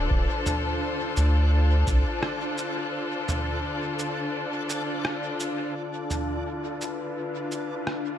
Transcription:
0.00 8.18 D3 medium
0.00 5.74 D4 medium
0.00 8.18 D4 medium
0.00 8.18 F4 medium
0.00 7.44 A4 medium
0.00 5.76 C5 medium
0.00 5.74 D5 medium
0.11 0.27 D1 loud
0.11 kick loud
0.46 mid tom medium
0.46 shaker medium
1.17 1.84 D2 medium
1.17 shaker soft
1.87 2.04 C2 loud
1.87 kick loud
1.87 shaker medium
2.23 cross-stick medium
2.58 shaker soft
3.29 mid tom medium
3.29 shaker medium
3.99 shaker medium
4.70 shaker medium
5.05 cross-stick medium
5.40 shaker medium
5.75 8.18 D4 medium
5.75 8.18 D5 medium
6.04 8.18 E4 medium
6.10 mid tom medium
6.10 shaker soft
6.75 8.18 B4 medium
6.81 shaker soft
7.52 shaker soft
7.87 cross-stick medium

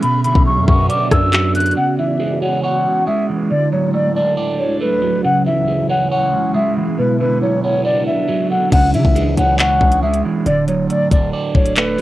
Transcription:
0.02 1.11 B2 medium
0.02 1.75 B3 medium
0.02 1.75 F#4 medium
0.02 1.75 D5 medium
0.02 0.21 B5 medium
0.02 closed hi-hat medium
0.24 1.33 D3 medium
0.24 0.43 B5 medium
0.24 closed hi-hat medium
0.35 0.58 B1 loud
0.35 kick loud
0.46 1.32 F#3 medium
0.46 0.64 C#6 medium
0.57 0.67 F#2 loud
0.68 0.89 F#2 loud
0.68 1.77 B3 medium
0.68 0.86 C#6 medium
0.68 kick medium
0.89 1.76 D4 medium
0.89 1.08 D6 loud
0.89 closed hi-hat medium
1.11 1.74 F#2 loud
1.11 1.52 E6 medium
1.11 kick medium
1.11 cross-stick loud
1.11 closed hi-hat medium
1.33 1.77 F#3 medium
1.33 clap loud
1.33 closed hi-hat medium
1.55 1.77 D3 medium
1.55 1.73 F#6 medium
1.55 closed hi-hat medium
1.60 closed hi-hat medium
1.66 closed hi-hat medium
1.71 closed hi-hat soft
1.76 3.49 C#3 medium
1.76 2.85 C#3 medium
1.76 3.49 G#3 medium
1.76 3.49 E4 medium
1.76 1.95 F#5 loud
1.98 3.07 E3 medium
1.98 2.39 E5 medium
2.20 3.06 G#3 medium
2.42 3.51 C#4 medium
2.42 2.60 F#5 medium
2.63 3.50 C#5 medium
2.63 3.04 F#5 medium
3.07 3.51 G#3 loud
3.07 3.25 E5 medium
3.29 3.51 E3 medium
3.50 5.23 D2 medium
3.50 5.23 A2 medium
3.50 4.59 D3 medium
3.50 5.23 F#3 medium
3.50 3.69 D5 medium
3.72 4.81 F#3 medium
3.72 3.91 C#5 medium
3.93 4.80 A3 medium
3.93 4.12 D5 medium
4.16 5.25 D4 medium
4.16 4.34 D5 medium
4.37 5.24 D5 medium
4.59 4.77 C#5 medium
4.81 5.24 A3 medium
4.81 5.22 B4 medium
5.02 5.24 F#3 medium
5.24 6.33 C#3 medium
5.24 6.97 C#3 medium
5.24 6.97 G#3 medium
5.24 6.97 E4 medium
5.24 5.43 F#5 loud
5.46 6.55 E3 medium
5.46 5.87 E5 medium
5.68 6.53 G#3 medium
5.89 6.98 C#4 medium
5.89 6.08 F#5 medium
6.11 6.98 C#5 medium
6.11 6.52 F#5 medium
6.54 6.98 G#3 loud
6.54 6.73 E5 medium
6.77 6.98 E3 medium
6.98 8.07 B2 medium
6.98 8.70 B2 medium
6.98 8.70 F#3 medium
6.98 8.70 D4 medium
6.98 7.17 B4 medium
7.20 8.29 D3 medium
7.20 7.38 B4 medium
7.42 8.27 F#3 medium
7.42 7.60 C#5 medium
7.63 8.72 B3 medium
7.63 7.82 C#5 medium
7.85 8.72 D4 medium
7.85 8.04 D5 medium
8.07 8.48 E5 medium
8.29 8.72 F#3 medium
8.51 8.72 D3 medium
8.51 8.69 F#5 medium
8.72 8.95 C#2 loud
8.72 9.81 C#3 medium
8.72 8.91 F#5 loud
8.72 kick loud
8.72 closed hi-hat medium
8.72 crash medium
8.94 9.04 C#3 loud
8.94 10.03 E3 medium
8.94 9.35 E5 medium
8.94 closed hi-hat medium
9.05 9.36 C#2 loud
9.05 kick medium
9.15 10.02 G#3 medium
9.15 closed hi-hat medium
9.37 9.79 C#2 loud
9.37 10.46 C#4 medium
9.37 9.56 F#5 medium
9.37 closed hi-hat medium
9.59 10.46 C#5 medium
9.59 10.00 F#5 medium
9.59 clap loud
9.59 closed hi-hat medium
9.81 10.23 C#2 loud
9.81 kick medium
9.92 closed hi-hat medium
10.03 10.46 G#3 loud
10.03 10.21 E5 medium
10.14 closed hi-hat medium
10.25 10.46 E3 medium
10.46 10.88 D1 loud
10.46 11.55 D3 medium
10.46 10.65 D5 loud
10.46 closed hi-hat medium
10.68 11.77 F#3 medium
10.68 10.86 C#5 medium
10.68 closed hi-hat medium
10.89 11.75 A3 medium
10.89 11.08 D5 loud
10.89 closed hi-hat medium
11.11 11.32 D1 loud
11.11 12.01 D4 loud
11.11 11.30 D5 medium
11.11 kick medium
11.11 closed hi-hat medium
11.33 12.01 D5 medium
11.55 11.97 D1 loud
11.55 11.73 C#5 medium
11.55 kick medium
11.65 closed hi-hat medium
11.76 12.01 A3 medium
11.76 12.01 B4 medium
11.76 clap loud
11.76 closed hi-hat medium
11.98 12.01 F#3 medium
11.98 open hi-hat medium

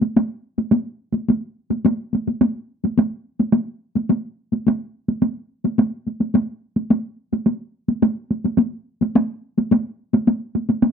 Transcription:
0.01 taiko high medium
0.16 taiko high medium
0.58 taiko high medium
0.72 taiko high medium
1.14 taiko high medium
1.28 taiko high medium
1.70 taiko high medium
1.85 taiko high medium
2.13 taiko high medium
2.27 taiko high soft
2.41 taiko high medium
2.84 taiko high medium
2.98 taiko high medium
3.40 taiko high medium
3.53 taiko high medium
3.95 taiko high soft
4.09 taiko high medium
4.52 taiko high soft
4.67 taiko high medium
5.08 taiko high soft
5.22 taiko high medium
5.64 taiko high medium
5.78 taiko high medium
6.07 taiko high soft
6.20 taiko high soft
6.34 taiko high medium
6.76 taiko high soft
6.90 taiko high medium
7.33 taiko high medium
7.46 taiko high medium
7.88 taiko high medium
8.02 taiko high medium
8.31 taiko high soft
8.44 taiko high medium
8.58 taiko high medium
9.01 taiko high medium
9.15 taiko high medium
9.58 taiko high medium
9.71 taiko high medium
10.13 taiko high medium
10.27 taiko high medium
10.55 taiko high medium
10.69 taiko high medium
10.83 taiko high medium

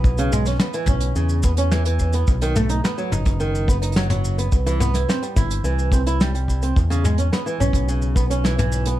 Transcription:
0.00 0.54 B1 medium
0.00 0.17 B3 medium
0.04 kick loud
0.04 shaker medium
0.18 0.31 C#3 loud
0.18 closed hi-hat medium
0.18 shaker soft
0.32 0.45 G#3 loud
0.32 mid tom medium
0.32 shaker medium
0.46 0.59 C#4 medium
0.46 snare soft
0.46 closed hi-hat medium
0.46 shaker medium
0.50 snare soft
0.55 snare soft
0.59 0.73 B3 medium
0.59 snare loud
0.59 shaker medium
0.68 snare soft
0.73 0.86 E3 medium
0.73 closed hi-hat soft
0.73 shaker soft
0.86 1.08 B1 medium
0.86 1.15 C#4 medium
0.86 kick loud
0.86 mid tom medium
0.86 shaker medium
1.00 closed hi-hat medium
1.00 shaker soft
1.15 2.22 E2 medium
1.15 1.42 C#3 medium
1.15 shaker medium
1.29 shaker soft
1.43 1.52 B3 medium
1.43 kick loud
1.43 shaker medium
1.57 1.71 C#4 medium
1.57 closed hi-hat medium
1.57 shaker medium
1.71 1.85 E3 medium
1.71 snare loud
1.71 shaker medium
1.85 2.13 E3 medium
1.85 closed hi-hat medium
1.85 shaker soft
1.99 kick medium
1.99 shaker medium
2.13 2.28 B3 medium
2.13 closed hi-hat medium
2.13 shaker soft
2.27 2.78 B1 loud
2.27 kick loud
2.27 shaker medium
2.41 2.55 D#3 medium
2.41 closed hi-hat medium
2.41 shaker medium
2.56 2.68 A3 loud
2.56 mid tom medium
2.56 shaker medium
2.69 2.82 D#4 medium
2.69 closed hi-hat medium
2.69 shaker medium
2.84 2.97 B3 medium
2.84 snare loud
2.84 shaker medium
2.98 3.11 F#3 medium
2.98 shaker soft
3.12 4.46 F#1 medium
3.12 3.39 D#4 medium
3.12 mid tom medium
3.12 shaker medium
3.25 kick loud
3.25 closed hi-hat medium
3.25 shaker soft
3.40 3.67 D#3 medium
3.40 shaker medium
3.55 shaker soft
3.68 3.76 B3 medium
3.68 kick loud
3.68 shaker medium
3.82 3.95 D#4 medium
3.82 closed hi-hat medium
3.82 shaker medium
3.92 closed hi-hat medium
3.96 4.09 F#3 medium
3.96 snare loud
3.96 shaker medium
4.01 closed hi-hat soft
4.10 4.37 F#3 medium
4.10 closed hi-hat medium
4.10 mid tom medium
4.10 shaker soft
4.25 shaker medium
4.38 4.52 B3 medium
4.38 closed hi-hat medium
4.38 shaker medium
4.52 5.03 C2 medium
4.52 kick loud
4.52 shaker medium
4.66 4.79 E3 loud
4.66 closed hi-hat medium
4.66 shaker soft
4.80 4.93 B3 loud
4.80 mid tom medium
4.80 shaker medium
4.94 5.07 E4 medium
4.94 snare soft
4.94 closed hi-hat medium
4.94 shaker medium
5.09 5.21 C4 medium
5.09 snare loud
5.09 shaker medium
5.22 5.35 G3 medium
5.22 closed hi-hat soft
5.22 shaker soft
5.36 5.57 G1 medium
5.36 5.63 E4 medium
5.36 kick loud
5.36 mid tom medium
5.36 shaker medium
5.51 closed hi-hat medium
5.51 shaker medium
5.63 6.70 C2 medium
5.63 5.91 E3 medium
5.63 shaker medium
5.79 shaker soft
5.92 6.01 C4 medium
5.92 kick loud
5.92 shaker medium
6.06 6.20 E4 medium
6.06 closed hi-hat medium
6.06 shaker medium
6.20 6.33 G3 medium
6.20 snare loud
6.20 shaker medium
6.34 6.61 G3 medium
6.34 closed hi-hat medium
6.34 shaker soft
6.48 kick medium
6.48 shaker medium
6.62 6.77 C4 medium
6.62 closed hi-hat medium
6.62 shaker medium
6.76 7.27 E2 medium
6.76 kick loud
6.76 shaker medium
6.90 7.03 C#3 loud
6.90 closed hi-hat medium
6.90 shaker soft
7.04 7.17 G#3 loud
7.04 mid tom medium
7.04 shaker medium
7.18 7.31 C#4 medium
7.18 closed hi-hat medium
7.18 shaker medium
7.33 7.45 B3 medium
7.33 snare medium
7.33 shaker medium
7.46 7.59 E3 medium
7.46 shaker soft
7.60 8.99 B1 medium
7.60 7.87 C#4 medium
7.60 mid tom medium
7.60 shaker medium
7.73 kick loud
7.73 closed hi-hat medium
7.73 shaker soft
7.88 8.15 C#3 medium
7.88 shaker medium
8.02 shaker soft
8.16 8.24 B3 medium
8.16 kick loud
8.16 shaker medium
8.30 8.44 C#4 medium
8.30 closed hi-hat medium
8.30 shaker medium
8.44 8.57 E3 medium
8.44 snare loud
8.44 shaker medium
8.58 8.85 E3 medium
8.58 closed hi-hat medium
8.58 mid tom medium
8.58 shaker soft
8.72 shaker medium
8.86 8.99 B3 medium
8.86 closed hi-hat medium
8.86 shaker soft

